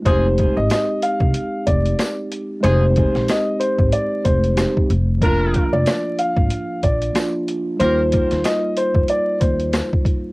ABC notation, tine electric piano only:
X:1
M:4/4
L:1/8
Q:"Swing 16ths" 1/4=93
K:Fdor
V:1 name="Tine electric piano"
[A,CEG]8 | [A,CEG]6 [A,CEG] z | [F,B,DF]6 [F,B,DF]2 | [G,B,EF]8 |]